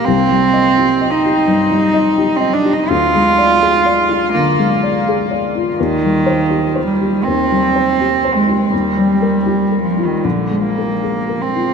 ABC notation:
X:1
M:4/4
L:1/16
Q:1/4=83
K:Cm
V:1 name="Felt piano"
(3C,,2 G,2 e2 (3G2 e2 G2 (3G,,2 G,2 e2 (3G2 e2 G2 | (3D,,2 A,2 d2 (3A2 d2 F2 (3D,2 A,2 d2 (3A2 d2 F2 | (3E,,2 G,2 c2 (3G2 c2 G2 (3E,,2 G,2 c2 (3G2 c2 G2 | (3E,,2 G,2 B2 (3G2 B2 F2 (3B,,,2 A,2 B2 (3A2 B2 F2 |]
V:2 name="Cello"
C6 E6- E C D E | F8 B,4 z4 | E,6 G,2 C6 A,2 | G,6 F, E, D,2 B,4 C2 |]